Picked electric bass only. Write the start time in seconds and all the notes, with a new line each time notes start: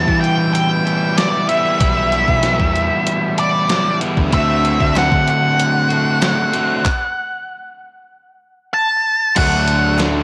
0.08 E3
1.80 B1
2.28 B1
2.60 E2
4.17 D2
4.33 D2
4.80 D2
5.11 D3
9.37 D2